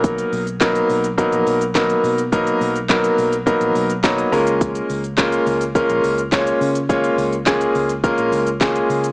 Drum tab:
HH |xxoxxxoxxxoxxxox|xxoxxxoxxxoxxxox|xxoxxxoxxxoxxxox|xxoxxxoxxxoxxxox|
SH |xxxxxxxxxxxxxxxx|xxxxxxxxxxxxxxxx|xxxxxxxxxxxxxxxx|xxxxxxxxxxxxxxxx|
CP |----x-------x---|----x-------x---|----x-------x---|----x-------x---|
SD |----o-------o---|----o-------o---|----o-------o---|----o-------o---|
BD |o---o---o---o---|o---o---o---o---|o---o---o---o---|o---o---o---o---|